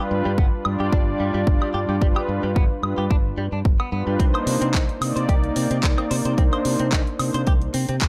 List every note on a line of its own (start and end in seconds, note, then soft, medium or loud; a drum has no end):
0.11 0.21 G2 medium
0.11 0.27 G3 medium
0.11 0.27 D4 medium
0.11 0.27 F4 medium
0.11 0.27 B4 loud
0.25 0.39 G2 medium
0.25 0.32 G3 medium
0.38 0.48 G1 medium
0.38 0.46 B3 medium
0.38 kick loud
0.65 0.76 G2 medium
0.65 1.04 G3 medium
0.65 1.04 D4 medium
0.65 1.04 F4 medium
0.65 1.04 D5 loud
0.65 high woodblock medium
0.80 0.89 G2 medium
0.80 0.86 G4 medium
0.92 1.13 G1 medium
0.92 0.97 D4 medium
0.92 kick loud
1.07 1.99 G3 medium
1.07 1.99 D4 medium
1.07 1.99 F4 medium
1.07 1.99 D5 medium
1.20 1.30 G2 medium
1.20 1.31 G3 medium
1.34 1.43 G2 medium
1.34 1.41 G3 loud
1.47 1.58 G1 medium
1.47 kick loud
1.61 1.68 G3 medium
1.61 high woodblock medium
1.74 1.85 G2 medium
1.74 1.79 G4 medium
1.89 1.98 G2 medium
1.89 1.95 G4 medium
2.01 2.12 G1 medium
2.01 2.26 G3 medium
2.01 2.06 G3 medium
2.01 2.26 D4 medium
2.01 2.26 F4 medium
2.01 2.26 B4 loud
2.01 kick loud
2.16 2.20 G4 loud
2.16 high woodblock medium
2.28 2.39 G2 medium
2.28 2.44 G3 medium
2.28 2.45 D4 medium
2.28 2.45 F4 medium
2.28 2.45 B4 medium
2.43 2.57 G2 medium
2.43 2.50 G3 medium
2.55 2.67 G1 medium
2.55 2.63 B3 medium
2.55 kick loud
2.83 2.94 G2 medium
2.83 2.99 G3 medium
2.83 2.99 D4 medium
2.83 2.99 F4 medium
2.83 2.99 B4 medium
2.83 high woodblock medium
2.98 3.07 G2 medium
2.98 3.04 G4 medium
3.10 3.31 G1 medium
3.10 3.15 D4 medium
3.10 kick loud
3.37 3.48 G2 medium
3.37 3.45 G3 medium
3.52 3.61 G2 medium
3.52 3.59 D4 medium
3.65 3.76 G1 medium
3.65 kick loud
3.80 3.89 B3 medium
3.80 high woodblock medium
3.92 4.03 G2 medium
3.92 4.16 G3 medium
3.92 4.04 B3 medium
3.92 4.17 D4 medium
3.92 4.17 F4 medium
3.92 4.17 B4 medium
4.07 4.16 G2 medium
4.07 4.13 G3 medium
4.19 4.30 C2 medium
4.19 4.44 A#3 medium
4.19 4.24 C4 medium
4.19 4.44 D4 medium
4.19 4.44 D#4 medium
4.19 4.44 C5 medium
4.19 kick loud
4.19 closed hi-hat soft
4.34 4.38 C5 medium
4.34 closed hi-hat soft
4.34 high woodblock medium
4.46 4.57 C3 medium
4.46 4.62 A#3 medium
4.46 4.63 D4 medium
4.46 4.63 D#4 medium
4.46 4.63 C5 loud
4.46 open hi-hat loud
4.61 4.76 C3 medium
4.61 4.68 C4 medium
4.61 closed hi-hat soft
4.74 4.85 C2 medium
4.74 4.82 D#4 medium
4.74 kick loud
4.74 clap loud
4.74 closed hi-hat soft
4.89 closed hi-hat soft
5.01 5.12 C3 medium
5.01 5.40 A#3 medium
5.01 5.40 D#4 medium
5.01 5.40 D5 loud
5.01 open hi-hat loud
5.01 high woodblock medium
5.16 5.25 C3 medium
5.16 5.23 C5 medium
5.16 closed hi-hat soft
5.29 5.49 C2 medium
5.29 5.33 G4 medium
5.29 kick loud
5.29 closed hi-hat soft
5.42 6.34 A#3 medium
5.42 6.35 D#4 medium
5.42 6.36 D5 medium
5.42 closed hi-hat soft
5.56 5.67 C3 medium
5.56 5.67 C4 medium
5.56 open hi-hat loud
5.71 5.80 C3 medium
5.71 5.77 C4 loud
5.71 closed hi-hat soft
5.83 5.94 C2 medium
5.83 kick loud
5.83 clap loud
5.83 closed hi-hat soft
5.98 6.04 C4 medium
5.98 closed hi-hat soft
5.98 high woodblock medium
6.11 6.21 C3 loud
6.11 6.15 C5 medium
6.11 open hi-hat medium
6.25 6.34 C3 medium
6.25 6.32 C5 medium
6.25 closed hi-hat soft
6.37 6.48 C2 medium
6.37 6.62 A#3 medium
6.37 6.42 C4 medium
6.37 6.62 D4 medium
6.37 6.62 D#4 medium
6.37 6.62 C5 loud
6.37 kick loud
6.37 closed hi-hat soft
6.53 6.57 C5 loud
6.53 closed hi-hat soft
6.53 high woodblock medium
6.65 6.76 C3 medium
6.65 6.81 A#3 medium
6.65 6.81 D4 medium
6.65 6.81 D#4 medium
6.65 6.81 C5 medium
6.65 open hi-hat loud
6.79 6.94 C3 medium
6.79 6.86 C4 medium
6.79 closed hi-hat soft
6.92 7.03 C2 medium
6.92 7.00 D#4 medium
6.92 kick loud
6.92 clap loud
6.92 closed hi-hat soft
7.07 closed hi-hat soft
7.19 7.30 C3 medium
7.19 7.35 A#3 medium
7.19 7.35 D4 medium
7.19 7.36 D#4 medium
7.19 7.36 C5 medium
7.19 open hi-hat medium
7.19 high woodblock medium
7.34 7.43 C3 medium
7.34 7.41 C5 medium
7.34 closed hi-hat soft
7.47 7.67 C2 medium
7.47 7.52 G4 loud
7.47 kick loud
7.47 closed hi-hat soft
7.62 closed hi-hat soft
7.74 7.85 C3 medium
7.74 7.85 C4 medium
7.74 open hi-hat medium
7.89 7.98 C3 medium
7.89 7.95 C4 loud
7.89 closed hi-hat soft
8.01 8.08 C2 medium
8.01 kick loud
8.01 clap loud
8.01 closed hi-hat soft